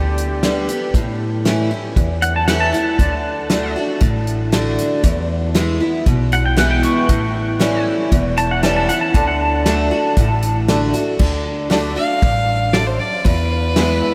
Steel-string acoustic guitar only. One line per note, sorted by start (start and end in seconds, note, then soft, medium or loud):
0.00 0.42 D3 medium
0.43 0.68 D3 medium
0.43 0.68 G3 medium
0.43 0.69 B3 medium
0.43 0.68 G4 medium
0.69 0.95 B3 soft
0.69 0.94 G4 medium
0.95 1.92 A2 medium
1.45 1.70 E3 medium
1.45 1.71 A3 medium
1.45 1.71 C#4 medium
1.45 1.70 E4 medium
1.71 1.97 C#4 soft
1.71 1.96 E4 medium
1.97 2.94 E2 medium
2.48 2.72 E3 medium
2.48 2.73 A3 medium
2.48 2.73 C#4 medium
2.48 2.71 E4 medium
2.73 2.99 C#4 soft
2.73 2.98 E4 medium
2.99 3.48 D3 medium
3.50 3.75 D3 medium
3.50 3.75 A3 medium
3.50 3.76 D4 medium
3.50 3.75 F#4 medium
3.76 4.02 D4 soft
3.76 4.01 F#4 medium
4.01 4.99 A2 medium
4.52 5.01 D3 medium
4.52 5.02 A3 medium
4.52 5.02 D4 medium
4.52 5.03 F#4 medium
5.04 6.01 E2 medium
5.55 5.80 E3 medium
5.55 5.80 G#3 medium
5.55 5.80 B3 medium
5.55 5.79 E4 medium
5.80 6.06 B3 soft
5.80 6.05 E4 medium
6.06 7.04 B2 medium
6.57 7.06 E3 medium
6.57 7.06 G#3 medium
6.57 7.07 B3 medium
6.57 7.07 E4 medium
7.09 8.07 A2 medium
7.60 8.09 E3 medium
7.60 8.09 G3 medium
7.60 8.10 C#4 medium
7.60 8.10 E4 loud
8.12 9.09 E2 medium
8.63 8.88 E3 medium
8.63 8.88 G3 medium
8.63 8.88 C#4 medium
8.63 8.88 E4 loud
8.89 9.15 C#4 medium
8.89 9.13 E4 medium
9.15 9.65 D3 medium
9.66 9.90 D3 medium
9.66 9.91 A3 medium
9.66 9.91 D4 medium
9.66 9.90 F#4 medium
9.91 10.17 D4 medium
9.91 10.16 F#4 medium
10.18 11.15 A2 loud
10.68 10.93 D3 medium
10.68 10.94 A3 medium
10.68 10.94 D4 medium
10.68 10.92 F#4 medium
10.93 11.20 D4 soft
10.93 11.18 F#4 medium
11.19 11.69 D3 medium
11.70 11.95 D3 medium
11.70 11.96 A3 medium
11.70 11.96 D4 medium
11.70 11.95 F#4 medium
11.96 12.22 D4 medium
11.96 12.21 F#4 medium
12.23 12.71 G2 medium
12.75 13.23 F#2 medium
13.26 14.14 E2 medium
13.76 14.14 E3 medium
13.76 14.14 G#3 medium
13.76 14.14 B3 medium
13.76 14.14 E4 loud